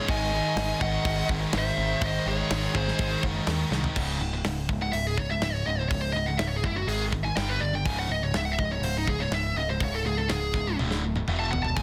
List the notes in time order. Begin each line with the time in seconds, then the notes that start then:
0.01 C#2 G#2
0.08 G#1 G#2 D#3 G#3 D#5 G#5, kick, open hi-hat
0.17 G#2 D#3
0.24 G#2 D#3
0.32 G#2 D#3
0.40 G#2 D#3
0.48 G#2 D#3
0.56 G#1 G#2 D#3, snare, open hi-hat
0.63 G#2 D#3
0.71 G#2 D#3
0.79 G#1 G#2 D#3 D#5 F#5, kick
0.86 G#2 D#3
0.94 G#2 D#3
1.01 G#1 G#2 D#3, kick
1.06 open hi-hat
1.10 G#2 D#3
1.17 G#2 D#3
1.25 G#1 G#2 D#3
1.29 G#2 D#3, kick
1.40 G#2 D#3
1.49 G#2 D#3
1.53 G#1 G#2 D#3, snare, open hi-hat
1.57 C5 E5
1.63 G#2 D#3
1.70 G#2 D#3
1.77 G#1 G#2 D#3
1.86 G#2 D#3
1.93 G#2 D#3
2.01 G#1 G#2 D#3 G#3 C5 D#5, kick, open hi-hat
2.12 G#2 D#3
2.19 G#2 D#3
2.26 G#1 G#2 D#3 G#4 C#5
2.34 G#2 D#3
2.41 G#2 D#3
2.49 G#1 G#2 D#3, snare, open hi-hat
2.56 G#2 D#3
2.65 G#2 D#3
2.72 G#1 G#2 D#3 G#4, kick
2.76 C5
2.81 G#2 D#3
2.88 G#2 D#3, snare
2.95 G#2 D#3, open hi-hat
2.99 G#1 G#2, kick
3.03 G#2 D#3
3.11 G#2 D#3
3.18 G#2 D#3
3.23 F#1 G#2, kick
3.27 D#3
3.35 G#2 D#3
3.42 G#2 D#3
3.47 D#2 G#2, snare, open hi-hat
3.51 D#3
3.57 G#2 D#3
3.65 G#2 D#3
3.71 C2 G#2 D#3, snare
3.80 G#2 D#3
3.84 floor tom
3.89 G#2 D#3
3.96 C#1 C#2 G#2 C#3, kick, crash
4.19 C#1 C#2 G#2
4.33 C#2 G#2
4.44 C#1 C#2 G#2, snare, open hi-hat
4.69 C#1 C#2 G#2, kick
4.81 C#2 G#2 F#5
4.92 C#1 C#2 G#2 E5, open hi-hat
5.07 G#4
5.18 C#2 G#2 C#5, kick
5.31 C#2 G#2 E5
5.40 C#1 C#2 G#2 E5, snare, open hi-hat
5.54 C#5
5.66 C#1 C#2 G#2 D#5
5.79 C#2 G#2 C5
5.89 C#1 C#2 G#2 C#5, kick, open hi-hat
6.02 C5
6.13 C#1 G#2 D#5
6.18 C#2
6.26 C#2 G#2 F#5
6.38 C#1 C#2 G#2 E5, snare, open hi-hat
6.47 C#5
6.56 G#4
6.63 F#1 C#2 G#2 E4, kick
6.76 C#2 G#2 F#4
6.87 G#1 G#2 D#3 G#3 G#4, open hi-hat
7.12 G#2 D#3, kick
7.24 G#2 D#3 G#5
7.37 G1 G2 D3 G3 G5, snare, open hi-hat
7.49 B4
7.61 G1 G2 D3 D5
7.74 G2 D3 G5
7.85 C#1 C#2 G#2 C#3 G#5, kick, open hi-hat
7.99 F#5
8.09 C#1 C#2 G#2 D#5
8.23 C#2 G#2 C#5
8.34 C#1 C#2 G#2 E5, snare, open hi-hat
8.45 F#5
8.51 E5
8.58 C#1 C#2 G#2 D#5, kick
8.71 C#2 G#2 C#5
8.82 C#1 C#2 G#2 C5, open hi-hat
8.98 D#4
9.07 C#2 G#2 G#4, kick
9.20 C#2 G#2 C#5
9.31 C#1 C#2 G#2 E5, snare, open hi-hat
9.55 C#1 C#2 G#2 D#5
9.70 C#2 G#2 C5
9.80 C#1 C#2 G#2 C#5, kick, open hi-hat
9.94 A4
10.05 C#1 C#2 G#2 G#4
10.17 C#2 G#2 A4
10.29 C#1 C#2 G#2 G#4, snare, open hi-hat
10.53 C#1 C#2 G#2, kick, snare
10.67 C#2 G#2
10.79 D1 D2 A2 D3, high tom
10.91 snare
11.04 D2 A2
11.16 D2 A2, mid tom
11.28 E1 E2 B2 E3, mid tom
11.39 A5
11.52 E1 E2 B2 F#5, floor tom
11.63 E2 B2 A5, floor tom
11.75 C#1 C#2 G#2 C#3 G#5, kick, open hi-hat